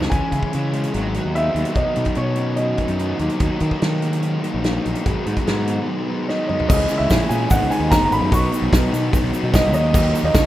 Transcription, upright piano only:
0, 0, Header, 1, 2, 480
1, 0, Start_track
1, 0, Key_signature, 5, "minor"
1, 0, Tempo, 411523
1, 132, Time_signature, 4, 2, 24, 8
1, 6852, Tempo, 406229
1, 12270, End_track
2, 0, Start_track
2, 0, Title_t, "Upright piano"
2, 0, Program_c, 0, 0
2, 115, Note_on_c, 0, 80, 88
2, 1036, Note_off_c, 0, 80, 0
2, 1578, Note_on_c, 0, 76, 104
2, 2022, Note_off_c, 0, 76, 0
2, 2057, Note_on_c, 0, 75, 88
2, 2528, Note_on_c, 0, 73, 80
2, 2550, Note_off_c, 0, 75, 0
2, 2987, Note_on_c, 0, 75, 76
2, 3026, Note_off_c, 0, 73, 0
2, 3675, Note_off_c, 0, 75, 0
2, 7336, Note_on_c, 0, 75, 73
2, 7547, Note_off_c, 0, 75, 0
2, 7565, Note_on_c, 0, 75, 70
2, 7794, Note_off_c, 0, 75, 0
2, 7811, Note_on_c, 0, 75, 83
2, 8155, Note_on_c, 0, 76, 89
2, 8187, Note_off_c, 0, 75, 0
2, 8526, Note_on_c, 0, 80, 85
2, 8539, Note_off_c, 0, 76, 0
2, 8756, Note_off_c, 0, 80, 0
2, 8781, Note_on_c, 0, 78, 92
2, 9018, Note_on_c, 0, 80, 85
2, 9028, Note_off_c, 0, 78, 0
2, 9253, Note_on_c, 0, 82, 111
2, 9267, Note_off_c, 0, 80, 0
2, 9405, Note_off_c, 0, 82, 0
2, 9423, Note_on_c, 0, 82, 76
2, 9492, Note_off_c, 0, 82, 0
2, 9508, Note_on_c, 0, 83, 101
2, 9750, Note_on_c, 0, 85, 102
2, 9751, Note_off_c, 0, 83, 0
2, 10417, Note_off_c, 0, 85, 0
2, 11177, Note_on_c, 0, 75, 82
2, 11406, Note_off_c, 0, 75, 0
2, 11423, Note_on_c, 0, 75, 100
2, 11977, Note_off_c, 0, 75, 0
2, 12022, Note_on_c, 0, 75, 85
2, 12270, Note_off_c, 0, 75, 0
2, 12270, End_track
0, 0, End_of_file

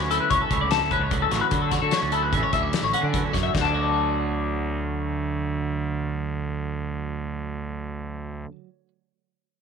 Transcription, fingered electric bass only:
0, 0, Header, 1, 2, 480
1, 0, Start_track
1, 0, Key_signature, 2, "major"
1, 0, Tempo, 406780
1, 1788, Time_signature, 5, 2, 24, 8
1, 11340, End_track
2, 0, Start_track
2, 0, Title_t, "Fingered electric bass"
2, 0, Program_c, 0, 33
2, 0, Note_on_c, 0, 38, 84
2, 212, Note_off_c, 0, 38, 0
2, 361, Note_on_c, 0, 37, 80
2, 469, Note_off_c, 0, 37, 0
2, 596, Note_on_c, 0, 37, 79
2, 928, Note_off_c, 0, 37, 0
2, 940, Note_on_c, 0, 38, 72
2, 1165, Note_off_c, 0, 38, 0
2, 1172, Note_on_c, 0, 37, 98
2, 1514, Note_off_c, 0, 37, 0
2, 1547, Note_on_c, 0, 33, 94
2, 1659, Note_off_c, 0, 33, 0
2, 1787, Note_on_c, 0, 50, 94
2, 2122, Note_off_c, 0, 50, 0
2, 2145, Note_on_c, 0, 50, 83
2, 2257, Note_off_c, 0, 50, 0
2, 2389, Note_on_c, 0, 38, 81
2, 2746, Note_on_c, 0, 33, 100
2, 2764, Note_off_c, 0, 38, 0
2, 2857, Note_off_c, 0, 33, 0
2, 2982, Note_on_c, 0, 38, 90
2, 3207, Note_off_c, 0, 38, 0
2, 3337, Note_on_c, 0, 33, 68
2, 3453, Note_off_c, 0, 33, 0
2, 3575, Note_on_c, 0, 50, 88
2, 3803, Note_off_c, 0, 50, 0
2, 3946, Note_on_c, 0, 42, 70
2, 4169, Note_off_c, 0, 42, 0
2, 4181, Note_on_c, 0, 38, 77
2, 9963, Note_off_c, 0, 38, 0
2, 11340, End_track
0, 0, End_of_file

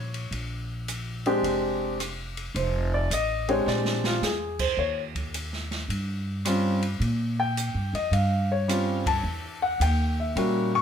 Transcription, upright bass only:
0, 0, Header, 1, 2, 480
1, 0, Start_track
1, 0, Tempo, 557621
1, 280, Time_signature, 4, 2, 24, 8
1, 9313, End_track
2, 0, Start_track
2, 0, Title_t, "Upright bass"
2, 0, Program_c, 0, 32
2, 0, Note_on_c, 0, 34, 72
2, 242, Note_off_c, 0, 34, 0
2, 266, Note_on_c, 0, 34, 61
2, 1197, Note_off_c, 0, 34, 0
2, 1229, Note_on_c, 0, 29, 66
2, 2158, Note_off_c, 0, 29, 0
2, 2191, Note_on_c, 0, 29, 74
2, 2640, Note_off_c, 0, 29, 0
2, 2670, Note_on_c, 0, 33, 71
2, 3119, Note_off_c, 0, 33, 0
2, 3151, Note_on_c, 0, 34, 72
2, 3600, Note_off_c, 0, 34, 0
2, 3628, Note_on_c, 0, 40, 61
2, 4078, Note_off_c, 0, 40, 0
2, 4107, Note_on_c, 0, 39, 66
2, 5037, Note_off_c, 0, 39, 0
2, 5065, Note_on_c, 0, 43, 60
2, 5996, Note_off_c, 0, 43, 0
2, 6025, Note_on_c, 0, 46, 70
2, 6636, Note_off_c, 0, 46, 0
2, 6666, Note_on_c, 0, 43, 52
2, 6820, Note_off_c, 0, 43, 0
2, 6829, Note_on_c, 0, 41, 60
2, 6978, Note_off_c, 0, 41, 0
2, 6983, Note_on_c, 0, 43, 62
2, 7916, Note_off_c, 0, 43, 0
2, 7948, Note_on_c, 0, 40, 64
2, 8399, Note_off_c, 0, 40, 0
2, 8435, Note_on_c, 0, 39, 73
2, 8883, Note_off_c, 0, 39, 0
2, 8914, Note_on_c, 0, 46, 63
2, 9313, Note_off_c, 0, 46, 0
2, 9313, End_track
0, 0, End_of_file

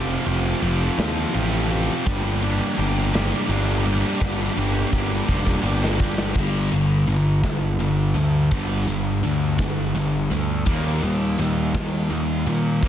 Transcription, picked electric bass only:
0, 0, Header, 1, 2, 480
1, 0, Start_track
1, 0, Key_signature, -2, "minor"
1, 0, Tempo, 719424
1, 1368, Time_signature, 6, 3, 24, 8
1, 8596, End_track
2, 0, Start_track
2, 0, Title_t, "Picked electric bass"
2, 0, Program_c, 0, 34
2, 0, Note_on_c, 0, 29, 88
2, 108, Note_off_c, 0, 29, 0
2, 175, Note_on_c, 0, 29, 84
2, 351, Note_off_c, 0, 29, 0
2, 414, Note_on_c, 0, 29, 96
2, 590, Note_off_c, 0, 29, 0
2, 656, Note_on_c, 0, 39, 99
2, 831, Note_off_c, 0, 39, 0
2, 901, Note_on_c, 0, 33, 90
2, 1252, Note_off_c, 0, 33, 0
2, 1379, Note_on_c, 0, 31, 99
2, 1731, Note_off_c, 0, 31, 0
2, 1857, Note_on_c, 0, 31, 93
2, 2210, Note_off_c, 0, 31, 0
2, 2327, Note_on_c, 0, 31, 81
2, 2683, Note_off_c, 0, 31, 0
2, 2811, Note_on_c, 0, 31, 101
2, 2987, Note_off_c, 0, 31, 0
2, 3049, Note_on_c, 0, 31, 92
2, 3226, Note_off_c, 0, 31, 0
2, 3285, Note_on_c, 0, 31, 81
2, 3463, Note_off_c, 0, 31, 0
2, 3525, Note_on_c, 0, 29, 101
2, 3704, Note_off_c, 0, 29, 0
2, 3757, Note_on_c, 0, 31, 93
2, 4235, Note_off_c, 0, 31, 0
2, 4238, Note_on_c, 0, 31, 78
2, 4472, Note_off_c, 0, 31, 0
2, 4481, Note_on_c, 0, 31, 85
2, 4712, Note_off_c, 0, 31, 0
2, 4716, Note_on_c, 0, 31, 87
2, 4951, Note_off_c, 0, 31, 0
2, 4958, Note_on_c, 0, 31, 89
2, 5184, Note_off_c, 0, 31, 0
2, 5188, Note_on_c, 0, 31, 89
2, 5427, Note_off_c, 0, 31, 0
2, 5435, Note_on_c, 0, 38, 90
2, 5671, Note_off_c, 0, 38, 0
2, 5680, Note_on_c, 0, 31, 90
2, 5914, Note_off_c, 0, 31, 0
2, 5920, Note_on_c, 0, 31, 80
2, 6147, Note_off_c, 0, 31, 0
2, 6151, Note_on_c, 0, 38, 79
2, 6389, Note_off_c, 0, 38, 0
2, 6397, Note_on_c, 0, 31, 96
2, 6632, Note_off_c, 0, 31, 0
2, 6636, Note_on_c, 0, 31, 76
2, 6871, Note_off_c, 0, 31, 0
2, 6875, Note_on_c, 0, 38, 88
2, 7111, Note_off_c, 0, 38, 0
2, 7119, Note_on_c, 0, 39, 79
2, 7353, Note_off_c, 0, 39, 0
2, 7357, Note_on_c, 0, 39, 99
2, 7590, Note_off_c, 0, 39, 0
2, 7594, Note_on_c, 0, 39, 89
2, 7830, Note_off_c, 0, 39, 0
2, 7834, Note_on_c, 0, 39, 89
2, 8070, Note_off_c, 0, 39, 0
2, 8075, Note_on_c, 0, 39, 90
2, 8311, Note_off_c, 0, 39, 0
2, 8316, Note_on_c, 0, 46, 99
2, 8552, Note_off_c, 0, 46, 0
2, 8558, Note_on_c, 0, 39, 89
2, 8596, Note_off_c, 0, 39, 0
2, 8596, End_track
0, 0, End_of_file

